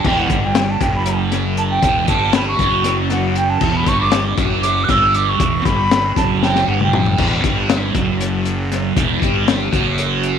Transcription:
0.04 E1 E2 E3 G5, kick, crash
0.19 F#5
0.30 G1 G2 G3, kick, closed hi-hat
0.44 G5
0.55 snare, closed hi-hat
0.70 A5
0.81 F#1 F#2 F#3 G5, kick, closed hi-hat
0.95 B5
1.06 closed hi-hat
1.32 snare, closed hi-hat
1.57 A5, closed hi-hat
1.70 G5
1.82 E1 E2 E3, kick, closed hi-hat
2.08 G1 G2 G3 A5, kick, closed hi-hat
2.33 B5, snare, closed hi-hat
2.48 C#6
2.59 F#1 F#2 F#3, kick, closed hi-hat
2.84 snare, closed hi-hat
3.10 F#5, snare, closed hi-hat
3.36 G5, closed hi-hat
3.50 A5
3.61 E1 E2 E3, kick, crash
3.76 B5
3.86 G1 G2 G3 C#6, kick, closed hi-hat
4.01 D6
4.12 snare, closed hi-hat
4.37 F#1 F#2 F#3, kick, closed hi-hat
4.62 D6, closed hi-hat
4.84 F#6
4.89 G1 G2 G3 E6, kick, snare, closed hi-hat
5.14 D6, closed hi-hat
5.29 C#6
5.39 E1 E2 E3, kick, closed hi-hat
5.65 G1 G2 G3 B5, kick, snare, closed hi-hat
5.91 snare, closed hi-hat
6.16 F#1 F#2 F#3 A5, kick, snare, closed hi-hat
6.35 A5
6.43 G5, snare
6.55 snare
6.67 G1 G2 G3 F#5
6.80 G5, mid tom
6.93 mid tom
7.06 floor tom
7.18 E1 E2 E3, kick, crash
7.44 G1 G2 G3, kick, closed hi-hat
7.69 snare, closed hi-hat
7.94 F#1 F#2 F#3, kick, closed hi-hat
8.21 closed hi-hat
8.45 closed hi-hat
8.72 snare, closed hi-hat
8.96 E1 E2 E3, kick, closed hi-hat
9.22 G1 G2 G3, kick, closed hi-hat
9.48 snare, closed hi-hat
9.73 F#1 F#2 F#3, kick, closed hi-hat
9.98 closed hi-hat
10.23 closed hi-hat

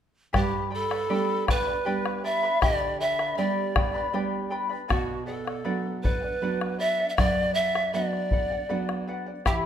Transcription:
0.33 G2 G4 B4 D5 G5 B5, bombo rim, bombo low
0.70 A4 B4 D5 G5 B5
0.91 B4 D5 B5, bombo rim
1.10 G3 B3 D4 G4 B4 D5 G5 B5
1.47 B4 D5 G5 B5, bombo rim, bombo low
1.67 B4 D5 B5
1.85 G3 B3 D4 G4 B4 D5 G5 B5
2.06 bombo rim
2.24 B4 D5 E5 G5 B5
2.43 B4 D5 B5
2.62 D3 G4 B4 D5 G5 B5, bombo rim, bombo low
3.00 B4 D5 E5 G5 B5
3.19 B4 D5 B5, bombo rim
3.37 G3 B3 D4 G4 B4 D5 G5 B5
3.76 B4 D5 G5 B5, bombo rim, bombo low
3.94 B4 D5 B5
4.13 G3 B3 D4 G4 B4 D5 G5 B5
4.50 B4 D5 G5 B5
4.69 B4 D5 B5
4.88 B2 F#4 B4 D5 F#5, bombo rim, bombo low
5.26 A4 B4 D5 F#5
5.45 D5 F#5, bombo rim
5.64 F#3 B3 D4 B4 D5 F#5
6.02 B4 D5 F#5, bombo low
6.22 D5 F#5
6.42 F#3 B3 D4 B4 D5 F#5
6.61 bombo rim
6.79 B4 D5 E5 F#5
6.98 D5 F#5
7.09 E5
7.17 F#2 B4 D5 F#5, bombo rim, bombo low
7.54 B4 D5 E5 F#5
7.75 D5 F#5, bombo rim
7.93 F#3 B3 D4 B4 D5 F#5, bombo rim
8.13 bombo rim
8.31 B4 D5 F#5, bombo low
8.51 D5 F#5
8.69 F#3 B3 D4 B4 D5 F#5, bombo rim
8.89 bombo rim
9.07 B4 D5 F#5
9.26 D5 F#5
9.45 E3 E4 G4 E5 G5 B5, bombo rim, bombo low

